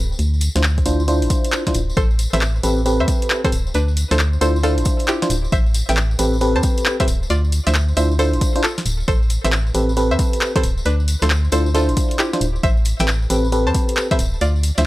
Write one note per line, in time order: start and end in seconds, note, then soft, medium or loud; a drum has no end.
0.00 0.15 D1 loud
0.12 tambourine soft
0.19 0.49 D2 loud
0.19 closed hi-hat medium
0.19 tambourine soft
0.34 tambourine soft
0.41 open hi-hat loud
0.41 tambourine medium
0.56 0.82 D2 loud
0.56 0.62 D4 medium
0.56 0.62 E4 medium
0.56 0.62 F4 medium
0.56 0.62 C5 medium
0.56 snare medium
0.56 closed hi-hat medium
0.56 tambourine soft
0.63 clap loud
0.63 tambourine medium
0.78 kick medium
0.78 closed hi-hat soft
0.78 tambourine soft
0.86 1.24 D2 medium
0.86 1.03 D4 medium
0.86 1.03 E4 medium
0.86 1.03 F4 medium
0.86 1.03 C5 loud
0.86 open hi-hat loud
0.86 tambourine medium
1.00 tambourine soft
1.08 1.63 D4 loud
1.08 1.63 E4 medium
1.08 1.63 F4 medium
1.08 1.63 C5 loud
1.08 closed hi-hat medium
1.08 tambourine soft
1.22 1.28 A1 medium
1.22 open hi-hat medium
1.22 tambourine soft
1.30 kick loud
1.30 open hi-hat loud
1.30 tambourine medium
1.44 closed hi-hat medium
1.44 tambourine soft
1.52 clap loud
1.52 tambourine medium
1.67 1.80 D4 medium
1.67 1.80 E4 medium
1.67 1.80 F4 medium
1.67 1.80 C5 medium
1.67 kick medium
1.67 snare medium
1.67 closed hi-hat medium
1.67 tambourine soft
1.74 1.92 D1 loud
1.74 open hi-hat loud
1.74 tambourine medium
1.90 tambourine soft
1.97 2.27 A1 medium
1.97 2.16 A4 medium
1.97 2.16 C5 loud
1.97 kick loud
1.97 closed hi-hat medium
1.97 tambourine medium
2.11 tambourine soft
2.19 open hi-hat loud
2.19 tambourine loud
2.33 2.60 A1 loud
2.33 2.40 C4 medium
2.33 2.40 G4 medium
2.33 2.40 A4 medium
2.33 2.40 B4 medium
2.33 2.50 C5 medium
2.33 2.50 E5 loud
2.33 snare medium
2.33 open hi-hat medium
2.33 tambourine soft
2.41 clap loud
2.41 tambourine soft
2.56 tambourine soft
2.63 3.01 A1 medium
2.63 2.81 C4 medium
2.63 2.81 G4 medium
2.63 2.81 A4 medium
2.63 2.81 B4 loud
2.63 open hi-hat loud
2.63 tambourine medium
2.78 tambourine soft
2.86 3.41 C4 medium
2.86 3.41 G4 medium
2.86 3.41 A4 medium
2.86 3.41 B4 loud
2.86 closed hi-hat medium
2.86 tambourine medium
2.99 3.06 E2 medium
2.99 3.24 C5 medium
2.99 3.24 E5 medium
2.99 tambourine soft
3.08 kick loud
3.08 open hi-hat loud
3.08 tambourine medium
3.22 closed hi-hat medium
3.22 tambourine soft
3.30 clap loud
3.30 tambourine medium
3.44 3.51 C4 medium
3.44 3.51 G4 medium
3.44 3.51 A4 medium
3.44 3.61 A4 medium
3.44 3.51 B4 medium
3.44 3.61 C5 medium
3.44 kick loud
3.44 snare medium
3.44 closed hi-hat medium
3.44 tambourine soft
3.52 3.70 D1 loud
3.52 open hi-hat loud
3.52 tambourine medium
3.67 tambourine soft
3.74 4.05 D2 medium
3.74 3.94 D4 medium
3.74 3.94 B4 medium
3.74 closed hi-hat medium
3.74 tambourine medium
3.88 tambourine soft
3.97 open hi-hat loud
3.97 tambourine medium
4.11 4.38 D2 loud
4.11 4.18 D4 medium
4.11 4.18 E4 medium
4.11 4.18 F4 medium
4.11 4.28 A4 medium
4.11 4.18 C5 medium
4.11 4.28 C5 loud
4.11 snare medium
4.11 closed hi-hat medium
4.11 tambourine soft
4.19 clap loud
4.19 tambourine soft
4.33 tambourine soft
4.41 4.79 D2 medium
4.41 4.58 D4 medium
4.41 4.58 E4 medium
4.41 4.58 F4 medium
4.41 4.56 A4 medium
4.41 4.58 C5 loud
4.41 4.56 C5 medium
4.41 open hi-hat loud
4.41 tambourine loud
4.56 tambourine soft
4.63 5.19 D4 loud
4.63 5.19 E4 medium
4.63 4.88 F4 medium
4.63 5.19 F4 medium
4.63 4.88 A4 loud
4.63 5.19 C5 loud
4.63 closed hi-hat medium
4.63 tambourine medium
4.78 4.83 A1 medium
4.78 open hi-hat medium
4.78 tambourine soft
4.85 kick loud
4.85 open hi-hat loud
4.85 tambourine medium
4.99 closed hi-hat medium
4.99 tambourine soft
5.07 5.23 E4 medium
5.07 5.23 G4 medium
5.07 clap loud
5.07 tambourine medium
5.22 5.35 D4 medium
5.22 5.35 E4 medium
5.22 5.35 F4 medium
5.22 5.35 C5 loud
5.22 snare medium
5.22 closed hi-hat soft
5.22 tambourine soft
5.30 5.48 D1 loud
5.30 open hi-hat loud
5.30 tambourine loud
5.44 tambourine soft
5.52 5.83 A1 loud
5.52 5.71 C5 medium
5.52 5.72 E5 loud
5.52 kick loud
5.52 closed hi-hat medium
5.52 tambourine medium
5.66 tambourine soft
5.74 open hi-hat loud
5.74 tambourine loud
5.89 6.16 A1 loud
5.89 5.96 C4 medium
5.89 5.96 G4 medium
5.89 5.96 A4 medium
5.89 5.96 B4 medium
5.89 6.06 E5 medium
5.89 6.06 G5 medium
5.89 snare medium
5.89 open hi-hat medium
5.89 tambourine soft
5.96 clap loud
5.96 tambourine medium
6.11 tambourine soft
6.19 6.57 A1 medium
6.19 6.36 C4 medium
6.19 6.36 G4 medium
6.19 6.36 A4 medium
6.19 6.36 B4 loud
6.19 open hi-hat loud
6.19 tambourine loud
6.33 tambourine soft
6.41 6.97 C4 loud
6.41 6.97 G4 medium
6.41 6.97 A4 medium
6.41 6.97 B4 loud
6.41 closed hi-hat medium
6.41 tambourine medium
6.55 6.61 E2 medium
6.55 6.79 C5 medium
6.55 6.79 A5 loud
6.55 tambourine soft
6.63 kick loud
6.63 open hi-hat loud
6.63 tambourine loud
6.77 closed hi-hat medium
6.77 tambourine soft
6.86 clap loud
6.86 tambourine medium
7.00 7.07 C4 medium
7.00 7.07 G4 medium
7.00 7.07 A4 medium
7.00 7.07 B4 loud
7.00 7.17 C5 medium
7.00 7.17 E5 medium
7.00 kick loud
7.00 snare medium
7.00 closed hi-hat medium
7.00 tambourine soft
7.08 7.26 D1 loud
7.08 open hi-hat loud
7.08 tambourine loud
7.23 tambourine soft
7.30 7.60 D2 loud
7.30 7.49 F4 medium
7.30 7.49 D5 medium
7.30 closed hi-hat medium
7.30 tambourine medium
7.44 tambourine soft
7.52 open hi-hat loud
7.52 tambourine loud
7.67 7.93 D2 loud
7.67 7.73 D4 medium
7.67 7.73 E4 medium
7.67 7.73 F4 medium
7.67 7.73 C5 medium
7.67 7.83 C5 medium
7.67 7.83 E5 loud
7.67 snare medium
7.67 closed hi-hat medium
7.67 tambourine soft
7.75 clap loud
7.75 tambourine medium
7.88 tambourine soft
7.97 8.35 D2 medium
7.97 8.14 D4 medium
7.97 8.14 E4 medium
7.97 8.14 F4 medium
7.97 8.12 C5 medium
7.97 8.14 C5 loud
7.97 8.12 E5 medium
7.97 open hi-hat loud
7.97 tambourine loud
8.11 tambourine soft
8.19 8.53 D4 medium
8.19 8.53 E4 medium
8.19 8.53 F4 medium
8.19 8.43 A4 medium
8.19 8.53 C5 loud
8.19 8.43 C5 loud
8.19 closed hi-hat medium
8.19 tambourine medium
8.33 8.39 A1 medium
8.33 open hi-hat medium
8.33 tambourine soft
8.41 kick loud
8.41 open hi-hat loud
8.41 tambourine loud
8.55 8.62 D4 loud
8.55 8.62 E4 medium
8.55 8.62 F4 medium
8.55 8.62 C5 loud
8.55 closed hi-hat medium
8.55 tambourine soft
8.63 8.78 F4 medium
8.63 8.78 A4 medium
8.63 clap loud
8.63 tambourine medium
8.78 snare soft
8.78 closed hi-hat soft
8.78 tambourine soft
8.85 9.04 D1 loud
8.85 open hi-hat loud
8.85 tambourine medium
9.00 tambourine soft
9.08 9.38 A1 loud
9.08 9.27 A4 medium
9.08 9.27 C5 loud
9.08 kick loud
9.08 closed hi-hat medium
9.08 tambourine medium
9.23 tambourine soft
9.30 open hi-hat loud
9.30 tambourine medium
9.44 9.71 A1 loud
9.44 9.51 C4 medium
9.44 9.51 G4 medium
9.44 9.51 A4 medium
9.44 9.51 B4 medium
9.44 9.61 C5 medium
9.44 9.61 E5 medium
9.44 snare medium
9.44 open hi-hat medium
9.44 tambourine soft
9.52 clap loud
9.52 tambourine soft
9.67 tambourine soft
9.74 10.13 A1 medium
9.74 9.92 C4 medium
9.74 9.92 G4 medium
9.74 9.92 A4 medium
9.74 9.92 B4 loud
9.74 open hi-hat loud
9.74 tambourine medium
9.89 tambourine soft
9.97 10.52 C4 medium
9.97 10.52 G4 medium
9.97 10.52 A4 medium
9.97 10.52 B4 loud
9.97 closed hi-hat medium
9.97 tambourine medium
10.11 10.17 E2 medium
10.11 10.35 C5 medium
10.11 10.35 E5 loud
10.11 tambourine soft
10.19 kick loud
10.19 open hi-hat loud
10.19 tambourine loud
10.33 closed hi-hat medium
10.33 tambourine soft
10.41 clap loud
10.41 tambourine medium
10.56 10.62 C4 medium
10.56 10.62 G4 medium
10.56 10.62 A4 medium
10.56 10.72 A4 medium
10.56 10.62 B4 medium
10.56 10.72 C5 medium
10.56 kick loud
10.56 snare soft
10.56 closed hi-hat medium
10.56 tambourine soft
10.63 10.81 D1 loud
10.63 open hi-hat loud
10.63 tambourine medium
10.77 tambourine soft
10.85 11.16 D2 loud
10.85 11.05 D4 medium
10.85 11.05 B4 loud
10.85 closed hi-hat medium
10.85 tambourine medium
11.00 tambourine soft
11.08 open hi-hat loud
11.08 tambourine medium
11.22 11.49 D2 loud
11.22 11.29 D4 medium
11.22 11.29 E4 medium
11.22 11.29 F4 medium
11.22 11.39 A4 medium
11.22 11.29 C5 medium
11.22 11.39 C5 loud
11.22 snare medium
11.22 closed hi-hat medium
11.22 tambourine soft
11.30 clap loud
11.30 tambourine medium
11.45 tambourine soft
11.52 11.90 D2 medium
11.52 11.69 D4 medium
11.52 11.69 E4 medium
11.52 11.69 F4 medium
11.52 11.67 A4 medium
11.52 11.69 C5 loud
11.52 11.67 C5 loud
11.52 open hi-hat loud
11.52 tambourine medium
11.66 tambourine soft
11.74 12.30 D4 loud
11.74 12.30 E4 medium
11.74 12.30 F4 medium
11.74 11.99 F4 medium
11.74 11.99 A4 medium
11.74 12.30 C5 loud
11.74 closed hi-hat medium
11.74 tambourine medium
11.89 11.94 A1 medium
11.89 open hi-hat medium
11.89 tambourine soft
11.97 kick loud
11.97 open hi-hat loud
11.97 tambourine medium
12.11 closed hi-hat medium
12.11 tambourine soft
12.19 12.34 E4 medium
12.19 12.34 G4 medium
12.19 clap loud
12.19 tambourine medium
12.33 12.46 D4 medium
12.33 12.46 E4 medium
12.33 12.46 F4 medium
12.33 12.46 C5 medium
12.33 snare soft
12.33 closed hi-hat medium
12.33 tambourine soft
12.41 12.59 D1 loud
12.41 open hi-hat loud
12.41 tambourine medium
12.56 tambourine soft
12.63 12.94 A1 loud
12.63 12.83 C5 medium
12.63 12.83 E5 loud
12.63 kick loud
12.63 closed hi-hat medium
12.63 tambourine soft
12.77 tambourine soft
12.85 open hi-hat loud
12.85 tambourine medium
12.99 13.27 A1 loud
12.99 13.07 C4 medium
12.99 13.07 G4 medium
12.99 13.07 A4 medium
12.99 13.07 B4 medium
12.99 13.17 E5 medium
12.99 13.17 G5 loud
12.99 snare medium
12.99 open hi-hat medium
12.99 tambourine soft
13.08 clap loud
13.08 tambourine medium
13.22 tambourine soft
13.30 13.68 A1 medium
13.30 13.47 C4 medium
13.30 13.47 G4 medium
13.30 13.47 A4 medium
13.30 13.47 B4 loud
13.30 open hi-hat loud
13.30 tambourine medium
13.44 tambourine soft
13.52 14.08 C4 medium
13.52 14.08 G4 medium
13.52 14.08 A4 medium
13.52 14.08 B4 loud
13.52 closed hi-hat medium
13.52 tambourine medium
13.67 13.72 E2 medium
13.67 13.90 C5 medium
13.67 13.90 A5 medium
13.67 tambourine soft
13.74 kick loud
13.74 open hi-hat loud
13.74 tambourine loud
13.88 closed hi-hat medium
13.88 tambourine soft
13.97 clap loud
13.97 tambourine medium
14.11 14.18 C4 medium
14.11 14.18 G4 medium
14.11 14.18 A4 medium
14.11 14.18 B4 medium
14.11 14.28 C5 medium
14.11 14.28 E5 loud
14.11 kick loud
14.11 snare medium
14.11 closed hi-hat medium
14.19 14.37 D1 loud
14.19 open hi-hat loud
14.19 tambourine medium
14.34 tambourine soft
14.41 14.71 D2 loud
14.41 14.60 F4 medium
14.41 14.60 D5 medium
14.41 closed hi-hat medium
14.41 tambourine medium
14.56 tambourine soft
14.63 open hi-hat loud
14.63 tambourine loud
14.77 14.86 D2 loud
14.77 14.84 D4 medium
14.77 14.84 E4 medium
14.77 14.84 F4 medium
14.77 14.84 C5 medium
14.77 14.86 C5 medium
14.77 14.86 E5 loud
14.77 snare medium
14.77 closed hi-hat medium
14.77 tambourine soft